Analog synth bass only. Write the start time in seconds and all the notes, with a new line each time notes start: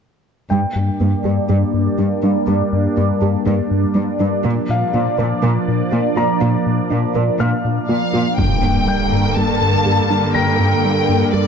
0.51 G2
0.76 G2
1.00 G2
1.25 G2
1.50 G2
1.74 G2
1.98 G3
2.24 G3
2.48 G2
2.73 G2
2.97 G2
3.22 G2
3.47 G2
3.71 G2
3.95 G3
4.20 G3
4.45 A#2
4.69 A#2
4.94 A#2
5.19 A#2
5.44 A#2
5.68 A#2
5.93 A#3
6.17 A#3
6.42 A#2
6.67 A#2
6.91 A#2
7.16 A#2
7.40 A#2
7.65 A#2
7.89 A#3
8.14 A#3
8.39 G2
8.63 G2
8.88 G3
9.12 G2
9.37 G2
9.62 G2
9.86 G2
10.11 G3
10.35 G2
10.60 G2
10.85 G3
11.09 G2
11.34 G2